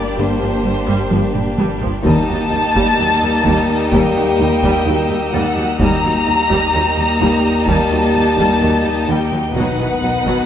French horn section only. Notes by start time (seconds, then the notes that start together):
Already playing: G3 A#3
2.05 G3 A#3
5.80 G3 A#3
9.55 D#3 B3